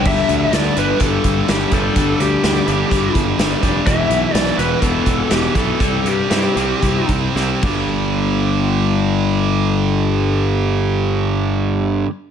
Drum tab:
CC |x-------|--------|--------|-------x|
HH |-xxxxxxx|xxxxxxxx|xxxxxxxx|xxxxxx--|
SD |--o---o-|--o---o-|--o---o-|--o---o-|
BD |o---oo-o|o---oo-o|o---oo-o|o---oo-o|

CC |--------|--------|
HH |--------|--------|
SD |--------|--------|
BD |--------|--------|